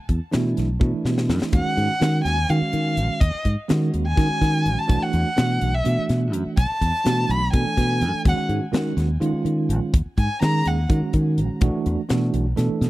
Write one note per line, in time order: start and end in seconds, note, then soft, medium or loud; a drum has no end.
0.09 0.18 E2 medium
0.09 kick medium
0.09 closed hi-hat medium
0.31 0.53 B2 medium
0.31 0.67 E3 medium
0.31 0.68 A3 medium
0.31 0.68 D4 medium
0.31 0.68 E4 medium
0.31 snare medium
0.31 closed hi-hat medium
0.57 0.77 B1 medium
0.57 snare soft
0.57 closed hi-hat medium
0.80 0.90 B2 medium
0.80 1.51 E3 medium
0.80 1.51 A3 medium
0.80 1.51 D4 medium
0.80 1.51 E4 medium
0.80 kick loud
0.93 muted fingered electric bass stroke soft
1.05 1.30 B2 medium
1.05 snare medium
1.18 snare medium
1.29 1.39 F#2 medium
1.29 snare medium
1.42 muted fingered electric bass stroke soft
1.42 snare medium
1.52 1.63 D#2 medium
1.52 1.91 D#3 medium
1.52 1.91 G#3 medium
1.52 1.91 C#4 medium
1.52 1.91 F#4 medium
1.52 2.22 F#5 medium
1.52 kick loud
1.52 closed hi-hat medium
1.65 muted fingered electric bass stroke soft
1.77 1.87 G#2 medium
1.77 closed hi-hat medium
2.00 2.36 D#3 medium
2.00 2.20 D#3 medium
2.00 2.36 G#3 medium
2.00 2.36 C#4 medium
2.00 2.36 F#4 medium
2.00 snare medium
2.00 closed hi-hat medium
2.24 2.44 D#2 medium
2.24 2.51 G#5 loud
2.24 snare soft
2.24 closed hi-hat medium
2.49 3.20 D#3 medium
2.49 2.59 D#3 medium
2.49 3.20 G#3 medium
2.49 3.20 C#4 medium
2.49 3.20 F#4 medium
2.49 3.22 F5 medium
2.49 closed hi-hat medium
2.61 muted fingered electric bass stroke soft
2.73 2.99 D#3 medium
2.73 closed hi-hat medium
2.97 3.07 A#1 medium
2.97 closed hi-hat medium
3.10 muted fingered electric bass stroke soft
3.21 3.31 D#2 medium
3.21 3.45 D#5 medium
3.21 kick loud
3.21 closed hi-hat medium
3.35 muted fingered electric bass stroke soft
3.45 3.55 G#2 medium
3.45 kick medium
3.45 closed hi-hat medium
3.69 4.04 D#3 medium
3.69 3.89 D#3 medium
3.69 4.04 G#3 medium
3.69 4.05 C#4 medium
3.69 4.05 F#4 medium
3.69 snare medium
3.69 closed hi-hat medium
3.94 4.13 D#2 medium
3.94 closed hi-hat medium
4.07 4.80 G#5 medium
4.15 4.87 D#3 medium
4.15 4.27 D#3 medium
4.15 4.87 G#3 medium
4.15 4.87 C#4 medium
4.15 4.88 F#4 medium
4.15 kick loud
4.15 snare soft
4.15 closed hi-hat medium
4.30 muted fingered electric bass stroke soft
4.41 4.67 D#3 medium
4.41 kick medium
4.41 snare soft
4.41 closed hi-hat soft
4.66 4.75 A#1 medium
4.66 closed hi-hat medium
4.78 5.04 A5 medium
4.78 muted fingered electric bass stroke soft
4.88 4.99 B1 medium
4.88 5.27 E3 medium
4.88 5.27 A3 medium
4.88 5.27 D4 medium
4.88 5.28 F#4 medium
4.88 kick loud
4.88 closed hi-hat medium
5.02 5.76 F#5 medium
5.02 muted fingered electric bass stroke soft
5.13 5.23 E2 medium
5.13 closed hi-hat medium
5.36 5.57 B2 medium
5.36 5.72 E3 medium
5.36 5.72 A3 medium
5.36 5.72 D4 medium
5.36 5.72 F#4 medium
5.36 snare loud
5.36 closed hi-hat medium
5.61 5.81 B1 loud
5.61 closed hi-hat medium
5.74 5.98 E5 medium
5.84 5.95 B2 medium
5.84 6.55 E3 medium
5.84 6.56 A3 medium
5.84 6.56 D4 medium
5.84 6.56 F#4 medium
5.84 closed hi-hat medium
5.98 muted fingered electric bass stroke soft
6.09 6.33 B2 medium
6.09 snare soft
6.09 closed hi-hat medium
6.33 6.43 F#2 medium
6.33 closed hi-hat medium
6.46 muted fingered electric bass stroke soft
6.57 6.67 B1 medium
6.57 7.32 A5 medium
6.57 kick loud
6.57 closed hi-hat medium
6.70 muted fingered electric bass stroke soft
6.81 6.91 E2 medium
6.81 kick medium
6.81 closed hi-hat medium
7.04 7.25 B2 medium
7.04 7.40 E3 medium
7.04 7.40 A3 medium
7.04 7.40 D4 medium
7.04 7.41 F#4 medium
7.04 snare loud
7.04 closed hi-hat medium
7.29 7.48 B1 loud
7.29 7.52 B5 loud
7.29 closed hi-hat medium
7.52 7.63 B2 medium
7.52 8.23 E3 medium
7.52 8.23 A3 medium
7.52 8.24 D4 medium
7.52 8.24 A4 medium
7.52 8.21 G#5 medium
7.52 kick medium
7.52 closed hi-hat medium
7.66 muted fingered electric bass stroke soft
7.77 8.03 B2 medium
7.77 kick medium
7.77 snare soft
7.77 closed hi-hat medium
8.01 8.11 F#2 medium
8.01 closed hi-hat medium
8.13 muted fingered electric bass stroke soft
8.25 8.35 D#2 medium
8.25 8.64 D#3 medium
8.25 8.64 G#3 medium
8.25 8.64 C#4 medium
8.25 8.64 F#4 medium
8.25 8.42 F#5 medium
8.25 kick loud
8.25 closed hi-hat medium
8.38 muted fingered electric bass stroke soft
8.49 8.59 G#2 medium
8.49 closed hi-hat medium
8.72 9.08 D#3 medium
8.72 8.92 D#3 medium
8.72 9.08 G#3 medium
8.72 9.08 C#4 medium
8.72 9.09 F#4 medium
8.72 snare loud
8.72 closed hi-hat medium
8.97 9.16 D#2 medium
8.97 snare soft
8.97 closed hi-hat medium
9.20 9.92 D#3 medium
9.20 9.31 D#3 loud
9.20 9.92 G#3 medium
9.20 9.92 C#4 medium
9.20 9.92 F4 loud
9.20 closed hi-hat medium
9.33 muted fingered electric bass stroke soft
9.45 9.71 D#3 medium
9.45 closed hi-hat medium
9.69 9.79 A#1 medium
9.69 closed hi-hat medium
9.94 10.03 D#2 medium
9.94 kick loud
9.94 closed hi-hat loud
10.06 muted fingered electric bass stroke soft
10.18 10.27 G#2 medium
10.18 10.40 G#5 medium
10.18 kick medium
10.18 closed hi-hat medium
10.41 10.77 D#3 medium
10.41 10.61 D#3 loud
10.41 10.77 G#3 medium
10.41 10.77 C#4 medium
10.41 10.77 G#4 medium
10.41 10.69 A#5 loud
10.41 snare medium
10.41 closed hi-hat medium
10.65 10.85 D#2 medium
10.65 10.90 F#5 medium
10.65 closed hi-hat medium
10.89 11.60 D#3 medium
10.89 10.99 D#3 medium
10.89 11.60 G#3 medium
10.89 11.60 C#4 medium
10.89 11.60 F#4 medium
10.89 kick loud
10.89 closed hi-hat medium
11.02 muted fingered electric bass stroke soft
11.13 11.39 D#3 medium
11.13 kick medium
11.13 closed hi-hat medium
11.38 11.47 A#1 medium
11.38 closed hi-hat medium
11.50 muted fingered electric bass stroke soft
11.61 11.71 B1 medium
11.61 12.00 E3 medium
11.61 12.00 A3 medium
11.61 12.00 D4 medium
11.61 12.00 F#4 loud
11.61 kick loud
11.61 closed hi-hat medium
11.86 11.96 E2 loud
11.86 closed hi-hat medium
12.09 12.29 B2 medium
12.09 12.44 E3 medium
12.09 12.45 A3 medium
12.09 12.45 D4 medium
12.09 12.45 F#4 medium
12.09 snare loud
12.09 closed hi-hat medium
12.34 12.53 B1 loud
12.34 closed hi-hat medium
12.56 12.68 B2 medium
12.56 12.90 E3 medium
12.56 12.90 A3 medium
12.56 12.90 D4 medium
12.56 12.90 A4 medium
12.56 snare soft
12.56 closed hi-hat medium
12.70 muted fingered electric bass stroke soft
12.81 12.90 B2 loud
12.81 snare soft
12.81 closed hi-hat medium